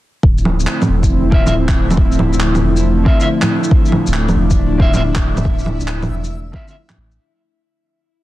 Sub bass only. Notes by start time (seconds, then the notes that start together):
0.23 D1
0.89 E1
1.32 D1
2.33 D1
2.63 E1
4.07 D1
4.36 E1
4.58 D1
5.81 D1
6.10 E1
6.97 A1